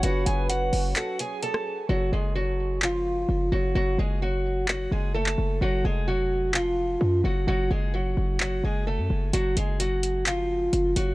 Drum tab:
HH |x-x-x-o-x-x-x---|----------------|----------------|----------------|
CP |--------x-------|--------x-------|--------x----x--|--------x-------|
SD |-------------r--|----------------|----------------|----------------|

HH |----------------|x-x-x-x-x---x-x-|
CP |--------x-------|--------x-------|
SD |----------------|----------------|